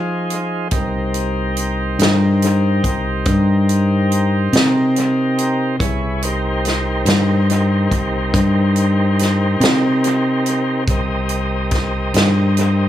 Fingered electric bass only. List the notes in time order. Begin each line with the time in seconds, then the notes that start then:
Already playing: F3
0.72 C2
1.99 G2
2.84 C2
3.26 G2
4.53 C3
5.81 C2
7.05 G2
7.91 C2
8.34 G2
9.60 C3
10.88 C2
12.14 G2